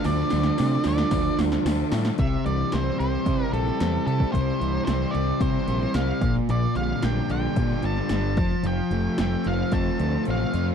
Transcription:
<<
  \new Staff \with { instrumentName = "Lead electric guitar" } { \time 4/4 \key c \mixolydian \tempo 4 = 111 d''4. d''4 r4. | e''8 d''8 c''8 c''4 a'4 a'8 | c''4 c''8 d''8 c''4 f''8. r16 | d''8 f''8 g''8 g''4 a''4 a''8 |
g''4 g''8 f''8 a''4 f''8. r16 | }
  \new Staff \with { instrumentName = "Tonewheel organ" } { \time 4/4 \key c \mixolydian <d' f' a'>1 | r1 | r1 | r1 |
r1 | }
  \new Staff \with { instrumentName = "Overdriven electric guitar" } { \time 4/4 \key c \mixolydian <d f a d'>8 <f a d'>8 <d f a d'>8 <f a d'>8 <d f a d'>4 <d f a d'>8 <f a d'>8 | c8 e8 g8 c'8 e'8 g8 c'8 e'8 | c8 e8 g8 c'8 e'8 g8 c'8 bes,8 | bes,8 d8 g8 d'8 f'8 g8 d'8 f8 |
f8 a8 a8 c'8 f'8 a8 c'8 f'8 | }
  \new Staff \with { instrumentName = "Distorted electric guitar" } { \clef bass \time 4/4 \key c \mixolydian <d a d'>2.~ <d a d'>8 r8 | c8 g8 c'8 c8 g8 c8 g8 e'8 | c8 g8 c'8 c8 g8 c8 g8 bes,8 | bes,8 g8 d'8 d8 g8 d8 g8 f8 |
f8 a8 c'8 f8 a8 f8 a8 f'8 | }
  \new Staff \with { instrumentName = "Fingered electric bass" } { \clef bass \time 4/4 \key c \mixolydian d,8 d,8 c8 d,8 d,8 d,8 d,8 a,8 | c,8 c,8 c,8 c,8 c8 bes,,8 e,8 c8 | c,8 c,8 c,8 c,8 c8 bes,,8 c,8 bes,,8 | bes,,8 bes,,8 bes,,8 bes,,8 bes,8 g,,8 g,,8 f,,8 |
f,,8 f,,8 f,,8 f,,8 f,8 d,8 a,,8 f,8 | }
  \new DrumStaff \with { instrumentName = "Drums" } \drummode { \time 4/4 <hho sn>8 <hho sn>16 sn16 <hho sn>8 <hho sn>16 sn16 <hho bd sn>8 <hho sn>16 sn16 <hho sn>8 <hho sn>16 sn16 | <hh bd>8 hh8 <hh sn>8 hh8 <hh bd>8 hh16 sn16 <hh sn>8 hh16 bd16 | <hh bd>8 hh8 <hh sn>8 hh8 <hh bd>8 hh16 sn16 <hh sn>8 <hh bd>16 sn16 | hh8 hh8 <hh sn>8 hh8 <hh bd>8 hh16 sn16 <hh sn>8 <hh bd>16 sn16 |
hh8 hh8 <hh sn>8 hh8 <hh bd>8 hh8 hh8 hh8 | }
>>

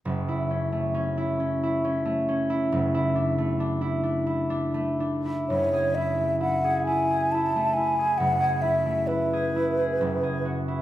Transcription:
<<
  \new Staff \with { instrumentName = "Flute" } { \time 3/4 \key fis \minor \tempo 4 = 67 r2. | r2. | cis''8 e''8 fis''8 gis''8 a''8 gis''8 | fis''8 e''8 b'4. r8 | }
  \new Staff \with { instrumentName = "Harp" } { \time 3/4 \key fis \minor fis,,16 e'16 cis'16 a16 cis'16 e'16 cis'16 e'16 cis'16 a16 cis'16 e'16 | fis,,16 e'16 d'16 a16 d'16 e'16 d'16 e'16 d'16 a16 d'16 e'16 | fis,,16 gis'16 e'16 a16 e'16 gis'16 e'16 gis'16 e'16 a16 e'16 gis'16 | fis,,16 gis'16 e'16 a16 e'16 gis'16 e'16 gis'16 fis,,16 gis'16 fis'16 e'16 | }
>>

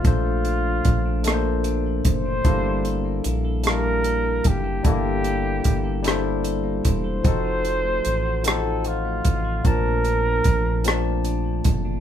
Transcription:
<<
  \new Staff \with { instrumentName = "Flugelhorn" } { \time 6/8 \key g \dorian \tempo 4. = 50 f'2 r8 c''8~ | c''4 r8 bes'4 g'8 | g'2 r8 c''8~ | c''4. a'8 f'4 |
bes'2 r4 | }
  \new Staff \with { instrumentName = "Clean electric guitar" } { \time 6/8 \key g \dorian bes,16 a16 d'16 f16 a16 d'16 bes,16 a16 d'16 f16 a16 d'16 | g16 e'16 a'16 bes16 e'16 a'16 g16 e'16 a'16 bes16 e'16 a'16 | g16 e'16 a'16 bes16 e'16 a'16 g16 e'16 a'16 bes16 e'16 a'16 | f16 ees'16 ges'16 a16 ees'16 ges'16 f16 ees'16 ges'16 a16 ees'16 ges'16 |
bes,16 a16 d'16 f16 a16 d'16 bes,16 a16 d'16 f16 a16 d'16 | }
  \new Staff \with { instrumentName = "Tine electric piano" } { \time 6/8 \key g \dorian <bes, a d' a' c''>4 r8 <bes, a d' a' bes' c''>4 r8 | <g bes d' e' a'>4 r8 <g bes d' e' a''>4 r8 | <g bes d' e' a'>4 r8 <g d' e' a' c''>4 r8 | <f c' ees' ges' a'>4 r8 <f c' ees' c'' ges''>4 r8 |
<bes, f c' d' a''>4 r8 <bes, f c' d' a''>4 r8 | }
  \new Staff \with { instrumentName = "Analog synth bass" } { \clef bass \time 6/8 \key g \dorian bes,,4 bes,,4. fis,,8 | g,,4 bes,,4. fis,,8 | g,,4 g,,4. e,,8 | f,,4 a,,4. a,,8 |
bes,,4 bes,,4. fis,,8 | }
  \new DrumStaff \with { instrumentName = "Drums" } \drummode { \time 6/8 <hh bd>8 hh8 <hh bd>8 <hh ss>8 hh8 <hh bd>8 | <hh bd>8 hh8 hh8 <hh ss>8 hh8 <hh bd>8 | <hh bd>8 hh8 <hh bd>8 <hh ss>8 hh8 <hh bd>8 | <hh bd>8 hh8 hh8 <hh ss>8 hh8 <hh bd>8 |
<hh bd>8 hh8 <hh bd>8 <hh ss>8 hh8 <hh bd>8 | }
>>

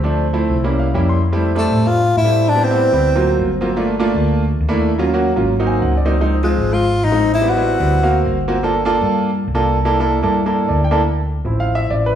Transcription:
<<
  \new Staff \with { instrumentName = "Tenor saxophone" } { \time 4/4 \key c \mixolydian \tempo 4 = 197 r1 | \key f \major r4 a4 f'4 e'4 | d'8 c'2. r8 | r1 |
r1 | r4 aes4 f'4 ees'4 | e'8 ges'2. r8 | r1 |
r1 | \key d \minor r1 | }
  \new Staff \with { instrumentName = "Grand piano" } { \time 4/4 \key c \mixolydian << { r2 r8 f''8 g''8 c'''8 | \key f \major r1 | r1 | r1 |
r2 r8 aes''8 ges''8 d''8 | r1 | r1 | r1 |
r2. d''8 g''8 | \key d \minor r2 f''8 e''8 d''8 b'8 | } \\ { <f a c' d'>8. r16 <f a c' e'>8. r16 <g bes des' e'>8. r16 <g bes des' e'>8. r16 | r16 <g a c' e'>8 r16 <g a c' d'>4. r8. <g a c' e'>8. | r16 <g b c' e'>16 r16 <g b c' e'>8 r16 <g b c' e'>8 r16 <fis ais c' eis'>4 r8 <fis ais c' eis'>16 | r16 <a bes d' f'>8 r16 <a bes d' f'>4. r8. <a bes d' e'>8. |
r16 <ges bes des' f'>16 r16 <ges bes des' ges'>8 r16 <ges bes des' f'>8 r16 <ges bes c' ees'>4 r8 <ges bes c' ees'>16 | r16 <f aes c' ees'>8 r16 <f aes c' f'>4. r8. <f aes c' ees'>8. | r16 <g b c' e'>16 r16 <g b c' e'>8 r16 <g b c' e'>8 r16 <ais c' fis' eis''>4 r8 <ais c' eis' fis'>16 | r16 <bes d' f' a'>8 r16 <bes d' f' a'>4. r8. <bes d' f' a'>8. |
r16 <bes d' e' a'>16 r16 <bes d' e' a'>8 r16 <bes d' e' a'>8 r16 <bes d' e' a'>4 r8 <bes d' e' a'>16 | r4. <f c' e'>2~ <f c' e'>8 | } >> }
  \new Staff \with { instrumentName = "Fingered electric bass" } { \clef bass \time 4/4 \key c \mixolydian d,4. c,4. f,4~ | \key f \major f,4. a,4. a,4~ | a,4. d,4. g,,4~ | g,,4. d,4. ees,4~ |
ees,4. aes,,4. des,4~ | des,4. aes,,4. a,,4~ | a,,4. d,4. g,,4~ | g,,4. g,4. c,4~ |
c,4. g,4. d,4~ | \key d \minor d,4. a,,4. a,,4 | }
>>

